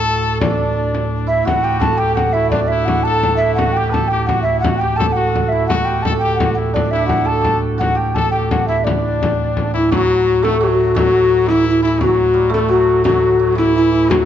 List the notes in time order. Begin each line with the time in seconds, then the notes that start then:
Already playing: D2 A2 E4 F#4 A4 B4 A5
0.07 frame drum
0.24 frame drum
0.41 D4 D5, frame drum
0.95 frame drum
1.27 E4 E5
1.45 D2 A2 F#4 F#5, frame drum
1.64 G4 G5, frame drum
1.80 A4 A5, frame drum
1.97 G4 G5, frame drum
2.15 F#4 F#5, frame drum
2.33 E4 E5, frame drum
2.51 D4 D5, frame drum
2.68 E4 E5, frame drum
2.85 F#4 F#5, frame drum
3.03 A4 A5, frame drum
3.23 frame drum
3.37 E5
3.41 E4, frame drum
3.55 F#4 F#5, frame drum
3.59 F#4
3.73 G4 G5
3.77 G4, frame drum
3.90 A4 B4 A5, frame drum
4.08 G4 G5, frame drum
4.26 F#4 F#5, frame drum
4.42 E4 E5
4.47 frame drum
4.60 F#4 F#5
4.64 frame drum
4.77 G4 G5
4.81 G4
4.96 A4 A5, frame drum
5.12 F#4 F#5
5.16 F#4, frame drum
5.35 F#4, frame drum
5.49 E4 E5
5.67 D2 A2 F#4 F#5, frame drum
5.85 G4 G5, frame drum
6.02 A4 A5, frame drum
6.19 G4 G5
6.23 G4, frame drum
6.35 F#5
6.40 F#4, frame drum
6.54 E4 F#5, frame drum
6.74 D4 D5, frame drum
6.86 D4
6.91 E4 E5, frame drum
6.96 D4
7.06 F#4 F#5, frame drum
7.25 A4 A5, frame drum
7.41 G4, frame drum
7.64 frame drum
7.78 F#4 F#5, frame drum
7.95 G4 G5, frame drum
8.14 A4 A5, frame drum
8.31 G4 G5, frame drum
8.51 F#4 F#5, frame drum
8.68 E4 E5, frame drum
8.84 D4 D5, frame drum
9.23 frame drum
9.57 frame drum
9.74 E3 E4
9.91 D2 A2 F#3 F#4, frame drum
10.27 frame drum
10.43 A3 A4, frame drum
10.61 F#3 G4
10.68 F#4
10.95 F#3, frame drum
10.99 F#4
11.46 E3 E4, frame drum
11.64 E3
11.70 E4
11.82 E3 E4
12.00 F#3 F#4, frame drum
12.34 G3, frame drum
12.49 A3 A4
12.54 frame drum
12.68 F#3 F#4
13.04 F#3 F#4, frame drum
13.23 frame drum
13.39 F#3
13.52 E3 F#3
13.57 E4, frame drum
13.75 E3 E4
13.91 E3 E4
14.10 D2 A2 F#3 F#4, frame drum